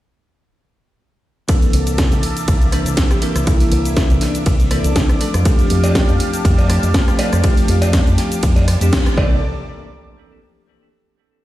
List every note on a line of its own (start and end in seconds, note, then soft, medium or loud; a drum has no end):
1.48 2.70 E3 medium
1.48 2.70 A#3 medium
1.48 5.17 A#3 medium
1.48 2.70 C4 medium
1.48 2.70 D4 medium
1.48 2.71 A4 loud
1.48 5.17 E5 medium
1.48 3.45 A5 medium
1.48 9.13 D6 medium
1.48 kick loud
1.48 closed hi-hat medium
1.48 ride medium
1.48 cabasa medium
1.62 closed hi-hat soft
1.62 cabasa soft
1.73 2.06 C2 loud
1.73 open hi-hat loud
1.87 closed hi-hat medium
1.87 cabasa medium
1.98 kick loud
1.98 snare loud
1.98 closed hi-hat medium
1.98 ride medium
1.98 cabasa medium
2.11 2.20 C2 loud
2.11 closed hi-hat soft
2.11 cabasa soft
2.23 open hi-hat loud
2.37 closed hi-hat medium
2.37 cabasa medium
2.48 2.81 C2 medium
2.48 kick loud
2.48 closed hi-hat medium
2.48 ride medium
2.48 cabasa medium
2.62 closed hi-hat soft
2.62 cabasa soft
2.72 3.19 E3 medium
2.72 3.20 A#3 medium
2.72 3.20 C4 medium
2.72 3.20 D4 medium
2.72 3.20 A4 medium
2.72 cross-stick medium
2.72 open hi-hat loud
2.86 2.94 C2 loud
2.86 closed hi-hat medium
2.86 cabasa medium
2.97 kick loud
2.97 snare loud
2.97 closed hi-hat medium
2.97 ride medium
2.97 cabasa medium
3.11 3.20 G4 medium
3.11 cross-stick medium
3.11 closed hi-hat soft
3.11 cabasa soft
3.21 3.44 E3 medium
3.21 3.44 A#3 medium
3.21 3.44 C4 medium
3.21 3.44 D4 medium
3.21 3.83 E4 loud
3.21 3.44 A#4 medium
3.21 open hi-hat loud
3.36 3.44 C2 medium
3.36 cross-stick medium
3.36 closed hi-hat medium
3.36 cabasa medium
3.46 4.68 E3 medium
3.46 4.68 A#3 medium
3.46 4.68 C4 medium
3.46 4.69 D4 medium
3.46 4.69 A4 loud
3.46 kick loud
3.46 closed hi-hat medium
3.46 ride medium
3.46 cabasa medium
3.60 open hi-hat medium
3.60 cabasa soft
3.72 4.05 C2 loud
3.72 open hi-hat loud
3.85 4.07 E4 medium
3.85 closed hi-hat medium
3.85 cabasa medium
3.97 kick loud
3.97 snare loud
3.97 closed hi-hat medium
3.97 ride medium
3.97 cabasa medium
4.10 4.19 C2 loud
4.10 closed hi-hat soft
4.10 cabasa soft
4.21 4.43 D4 medium
4.21 snare soft
4.21 open hi-hat loud
4.35 closed hi-hat medium
4.35 cabasa medium
4.46 4.79 C2 medium
4.46 kick loud
4.46 closed hi-hat medium
4.46 ride medium
4.46 cabasa medium
4.60 closed hi-hat soft
4.60 cabasa soft
4.71 5.18 E3 medium
4.71 5.18 A#3 medium
4.71 5.18 C4 medium
4.71 5.26 D4 loud
4.71 5.18 D4 medium
4.71 5.18 A4 medium
4.71 cross-stick medium
4.71 open hi-hat loud
4.84 4.93 C2 loud
4.84 closed hi-hat medium
4.84 cabasa medium
4.96 kick loud
4.96 snare loud
4.96 closed hi-hat medium
4.96 ride medium
4.96 cabasa medium
5.09 cross-stick medium
5.09 closed hi-hat soft
5.09 cabasa soft
5.20 5.43 F3 medium
5.20 5.43 A3 medium
5.20 5.43 C4 medium
5.20 5.43 D4 medium
5.20 9.13 G4 medium
5.20 5.43 A4 medium
5.20 9.13 F5 medium
5.20 9.13 A5 medium
5.20 open hi-hat loud
5.34 5.43 F2 medium
5.34 cross-stick medium
5.34 closed hi-hat medium
5.34 cabasa medium
5.45 6.66 F3 loud
5.45 6.67 A3 medium
5.45 6.67 C4 medium
5.45 6.67 D4 medium
5.45 6.67 G4 loud
5.45 kick loud
5.45 closed hi-hat medium
5.45 ride medium
5.45 cabasa medium
5.59 closed hi-hat soft
5.59 cabasa soft
5.70 6.03 F2 loud
5.70 open hi-hat loud
5.84 closed hi-hat medium
5.84 cowbell loud
5.84 cabasa medium
5.95 kick loud
5.95 snare loud
5.95 closed hi-hat medium
5.95 ride medium
5.95 cabasa medium
6.09 6.17 F2 loud
6.09 closed hi-hat soft
6.09 cabasa soft
6.20 open hi-hat loud
6.33 closed hi-hat medium
6.33 cabasa medium
6.45 6.78 F2 medium
6.45 kick loud
6.45 closed hi-hat medium
6.45 ride medium
6.45 cabasa medium
6.58 closed hi-hat soft
6.58 cowbell medium
6.58 cabasa soft
6.69 7.16 F3 medium
6.69 7.16 A3 medium
6.69 7.16 C4 medium
6.69 7.16 D4 medium
6.69 7.17 G4 medium
6.69 cross-stick medium
6.69 open hi-hat loud
6.83 6.92 F2 loud
6.83 closed hi-hat medium
6.83 cabasa medium
6.94 kick loud
6.94 snare loud
6.94 closed hi-hat medium
6.94 ride medium
6.94 cabasa medium
7.08 cross-stick medium
7.08 closed hi-hat soft
7.08 cabasa soft
7.18 7.41 F3 medium
7.18 7.41 A3 medium
7.18 7.41 C4 medium
7.18 7.41 D4 medium
7.18 7.41 A4 medium
7.18 open hi-hat loud
7.18 cowbell loud
7.33 7.41 F2 medium
7.33 cross-stick medium
7.33 closed hi-hat medium
7.33 cabasa medium
7.42 8.64 F3 loud
7.42 8.65 A3 medium
7.42 8.65 C4 medium
7.42 8.65 D4 medium
7.42 8.65 G4 loud
7.42 kick loud
7.42 closed hi-hat medium
7.42 ride medium
7.42 cabasa medium
7.57 open hi-hat medium
7.57 cabasa soft
7.68 8.01 F2 loud
7.68 open hi-hat loud
7.82 closed hi-hat soft
7.82 cowbell loud
7.82 cabasa medium
7.93 kick loud
7.93 snare loud
7.93 closed hi-hat medium
7.93 ride medium
7.93 cabasa medium
8.07 8.15 F2 loud
8.07 closed hi-hat soft
8.07 cabasa soft
8.18 snare soft
8.18 open hi-hat loud
8.32 closed hi-hat soft
8.32 cabasa medium
8.43 8.76 F2 medium
8.43 kick loud
8.43 closed hi-hat medium
8.43 ride medium
8.43 cabasa medium
8.56 closed hi-hat soft
8.56 cowbell medium
8.56 cabasa soft
8.68 cross-stick medium
8.68 open hi-hat loud
8.81 8.90 F2 loud
8.81 9.17 F3 medium
8.81 9.17 A3 medium
8.81 9.17 C4 medium
8.81 9.17 D4 medium
8.81 9.18 G4 loud
8.81 closed hi-hat medium
8.81 cabasa medium
8.93 kick loud
8.93 snare loud
8.93 closed hi-hat medium
8.93 ride medium
8.93 cabasa medium
9.06 cross-stick medium
9.06 closed hi-hat soft
9.06 cabasa soft
9.16 9.41 C2 loud
9.16 9.36 E3 medium
9.16 9.36 A#3 medium
9.16 9.37 C4 medium
9.16 9.37 D4 medium
9.16 9.37 A4 loud
9.16 kick loud
9.16 cowbell loud